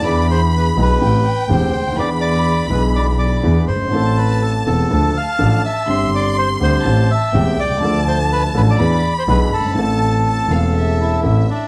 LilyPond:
<<
  \new Staff \with { instrumentName = "Violin section" } { \time 4/4 \key a \minor \tempo 4 = 124 b''2 g''2 | b''2.~ b''8 r8 | a''2 a''2 | c'''2 a''4 g''4 |
a''2 b''2 | a''4 a''8 f''8 e''4 e''4 | }
  \new Staff \with { instrumentName = "Bandoneon" } { \time 4/4 \key a \minor d''8 c''8 b'8 b'4. c''4 | d''8 d''4 b'8 d''8 d''4 c''8~ | c''8 b'8 a'8 a'4 f''4 e''8~ | e''8 d''8 c''8 c''4 e''4 d''8~ |
d''8 c''8 b'8 b'16 d''4 c''16 b'8 a'8~ | a'2~ a'8 e'4 d'8 | }
  \new Staff \with { instrumentName = "Grand piano" } { \clef bass \time 4/4 \key a \minor <e, e b d' gis'>4. <b,, b, e b d' gis'>8 <a,, a, e a c' g'>8 r8 <e,, e, e a c' g'>8 r32 cis,32 d,32 dis,32 | <e, e b d' gis'>4. <b,, b, e b d' gis'>4. <e, e b d' gis'>8 r32 fis,,32 g,,32 gis,,32 | <a,, a, e a c' a'>4. <e,, e, e a c' a'>8 <d, d f a d' a'>8 r8 <a,, a, f a d' a'>8 r8 | <g,, g, d g c' g'>4. <d, d g c' g'>8 <a,, a, e a c' g'>8 r8 <e,, e, e a c' g'>8 r32 b,,32 c,32 cis,32 |
<d, d f a d' a'>4. <a,, a, f a d' a'>8 <e, e b d' gis'>8 r8 <b,, b, e b d' gis'>8 r32 fis,,32 g,,32 gis,,32 | <a,, a, e a c' a'>4. <e,, e, e a c' a'>4. <a,, a, e a c' a'>8 r8 | }
  \new Staff \with { instrumentName = "Double bass" } { \clef bass \time 4/4 \key a \minor e,4. b,,8 a,,8 r8 e,,8 d,8 | e,4. b,,4. e,8 g,,8 | a,,4. e,,8 d,8 r8 a,,8 r8 | g,,4. d,8 a,,8 r8 e,,8 c,8 |
d,4. a,,8 e,8 r8 b,,8 g,,8 | a,,4. e,,4. a,,8 r8 | }
>>